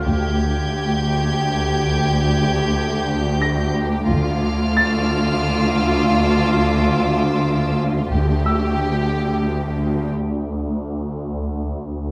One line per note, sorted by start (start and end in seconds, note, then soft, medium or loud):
0.00 4.04 D2 medium
0.00 4.04 D2 soft
0.00 4.04 G4 soft
0.00 1.68 F5 soft
0.00 1.68 F6 soft
0.04 0.67 D2 soft
0.04 3.71 G6 soft
0.04 3.04 G#6 soft
3.42 5.39 A#6 soft
4.07 4.72 D2 medium
4.07 8.09 D2 medium
4.07 8.08 F4 medium
4.07 7.74 D6 soft
4.07 6.39 F6 soft
4.76 7.75 E6 soft
4.76 6.74 A6 medium
8.12 8.76 D2 soft
8.12 12.11 D2 medium
8.12 10.11 D2 soft
8.12 10.11 G4 soft
8.46 10.11 E6 soft